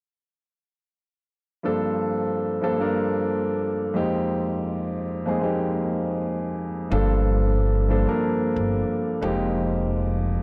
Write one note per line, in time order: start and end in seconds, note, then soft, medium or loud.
1.63 2.43 G2 medium
1.63 2.43 F3 medium
1.63 2.44 A#3 medium
1.63 2.44 C4 medium
1.63 2.44 D4 medium
1.63 2.44 A4 medium
2.61 2.76 G2 medium
2.61 2.77 F3 medium
2.61 2.77 A#3 medium
2.61 2.77 C4 medium
2.61 2.77 D4 medium
2.61 2.78 A4 medium
2.79 3.84 G2 medium
2.79 3.84 F3 medium
2.79 3.84 A#3 medium
2.79 3.84 C4 medium
2.79 3.85 D4 medium
2.79 3.85 A#4 medium
3.94 5.00 F2 medium
3.94 5.01 G#3 medium
3.94 5.01 A#3 medium
3.94 5.01 C4 medium
3.94 5.01 D#4 medium
3.94 5.01 G4 loud
5.26 5.40 F2 medium
5.26 5.40 G#3 medium
5.26 5.41 A#3 medium
5.26 5.41 C4 medium
5.26 5.41 D#4 medium
5.26 5.42 G#4 medium
5.41 6.47 F2 medium
5.41 6.47 G#3 medium
5.41 6.47 A#3 medium
5.41 6.48 C4 medium
5.41 6.48 D#4 medium
5.41 6.48 G4 medium
6.90 8.04 G1 loud
6.90 7.70 G2 medium
6.90 7.71 F3 medium
6.90 7.71 A#3 medium
6.90 7.71 C4 medium
6.90 7.71 D4 medium
6.90 7.72 A4 loud
7.89 8.04 G2 medium
7.89 8.04 F3 medium
7.89 8.04 A#3 medium
7.89 8.04 C4 medium
7.89 8.05 D4 medium
7.89 8.05 A4 medium
8.06 9.11 G2 medium
8.06 9.11 F3 medium
8.06 9.12 A#3 medium
8.06 9.12 C4 medium
8.06 9.12 D4 medium
8.06 9.12 A#4 loud
8.56 8.81 G1 medium
9.22 10.36 F1 loud
9.22 10.28 F2 medium
9.22 10.28 G#3 medium
9.22 10.28 A#3 medium
9.22 10.29 C4 medium
9.22 10.29 D#4 medium
9.22 10.29 G4 loud